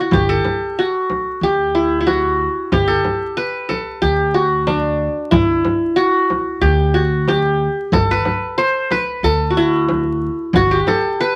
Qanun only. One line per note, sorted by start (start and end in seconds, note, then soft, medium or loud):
0.00 0.55 E4 medium
0.00 0.19 F#4 medium
0.13 0.85 G4 medium
0.29 1.46 A4 medium
0.79 1.49 F#4 medium
1.43 2.69 G4 medium
1.75 2.00 E4 medium
2.01 3.40 E4 soft
2.07 2.78 F#4 medium
2.72 3.98 G4 medium
2.88 3.68 A4 medium
3.37 4.47 B4 medium
3.69 4.86 A4 medium
4.02 4.40 G4 medium
4.34 5.65 F#4 medium
4.67 6.16 D4 medium
5.31 6.70 E4 medium
5.96 6.68 F#4 medium
6.62 7.00 G4 medium
6.94 7.34 F#4 medium
7.28 8.54 G4 medium
7.93 9.10 A4 medium
8.11 8.64 B4 medium
8.58 8.97 C5 medium
8.91 10.01 B4 medium
9.24 10.41 A4 medium
9.50 10.55 F#4 medium
9.57 10.96 E4 medium
10.56 10.77 F#4 medium
10.71 11.36 G4 medium
10.88 11.36 A4 medium
11.20 11.36 B4 medium